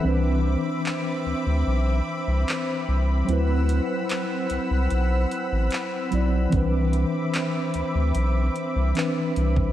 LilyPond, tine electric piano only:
\new Staff \with { instrumentName = "Tine electric piano" } { \time 4/4 \key c \lydian \tempo 4 = 74 <e c' d' b'>1 | <fis c' e' b'>2.~ <fis c' e' b'>8 <fis c' e' d''>8 | <e c' d' b'>2. <e c' d' b'>4 | }